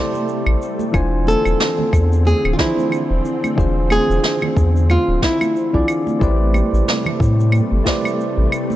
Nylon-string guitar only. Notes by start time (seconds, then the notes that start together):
Already playing: C5
1.28 A4
2.27 G#4
2.53 F4
2.59 E4
3.92 G#4
4.91 F4
5.24 E4